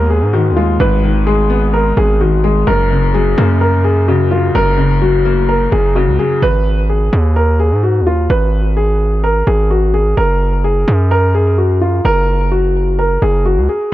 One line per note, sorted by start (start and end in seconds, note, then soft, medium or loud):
0.00 0.23 D#2 loud
0.00 0.80 G#2 loud
0.00 0.32 D#3 medium
0.00 0.55 G#3 medium
0.00 0.80 B3 medium
0.10 0.32 G#4 medium
0.21 0.52 G#2 loud
0.33 1.02 D#3 medium
0.33 0.55 F#4 medium
0.51 0.78 D#2 loud
0.56 1.25 G#3 medium
0.56 0.78 F4 medium
0.80 1.93 G#1 loud
0.80 1.97 G#2 loud
0.80 1.24 B4 loud
1.04 2.19 D#3 medium
1.26 2.42 G#3 medium
1.26 1.71 G#4 medium
1.50 2.67 B3 medium
1.74 1.95 A#4 medium
1.97 2.65 G#1 loud
1.97 2.19 G#4 medium
2.21 2.68 D#3 medium
2.21 2.42 F#4 medium
2.44 2.67 G#3 medium
2.44 2.66 G#4 medium
2.67 3.35 F#1 loud
2.67 3.84 F#2 loud
2.67 3.11 A#4 loud
2.91 4.07 C#3 medium
3.14 4.30 F#3 medium
3.14 3.58 G#4 medium
3.38 4.51 F#2 loud
3.38 4.55 A#3 medium
3.61 3.83 A#4 medium
3.84 4.06 G#4 medium
4.08 4.76 C#3 medium
4.08 4.30 F#4 medium
4.31 5.00 F#3 medium
4.31 4.53 F4 medium
4.55 5.68 F#1 loud
4.55 5.72 F#2 medium
4.55 4.99 A#4 loud
4.78 5.94 C#3 medium
5.01 6.17 F#3 medium
5.01 5.46 F#4 medium
5.25 6.42 A#3 medium
5.49 5.70 A#4 medium
5.72 6.09 F#1 loud
5.72 5.94 G#4 medium
5.95 6.43 C#3 medium
5.95 6.17 F#4 medium
6.07 6.18 C#2 loud
6.19 6.42 F#3 medium
6.19 6.41 G#4 medium
6.42 7.10 G#1 loud
6.42 6.86 B4 loud
6.89 7.33 G#4 medium
7.13 7.73 D#2 loud
7.36 7.58 A#4 medium
7.60 7.81 G#4 medium
7.71 8.02 G#2 loud
7.83 8.05 F#4 medium
8.01 8.28 D#2 loud
8.07 8.28 F4 medium
8.30 9.43 G#1 loud
8.30 8.74 B4 loud
8.77 9.21 G#4 medium
9.24 9.45 A#4 medium
9.47 10.15 G#1 loud
9.47 9.69 G#4 medium
9.71 9.92 F#4 medium
9.94 10.16 G#4 medium
10.17 10.85 F#1 loud
10.17 10.61 A#4 loud
10.64 11.08 G#4 medium
10.88 12.01 F#2 loud
11.11 11.33 A#4 medium
11.35 11.56 G#4 medium
11.58 11.80 F#4 medium
11.82 12.03 F4 medium
12.05 13.18 F#1 loud
12.05 12.49 A#4 loud
12.52 12.96 F#4 medium
12.99 13.21 A#4 medium
13.22 13.59 F#1 loud
13.22 13.44 G#4 medium
13.46 13.67 F#4 medium
13.57 13.68 C#2 loud
13.69 13.91 G#4 medium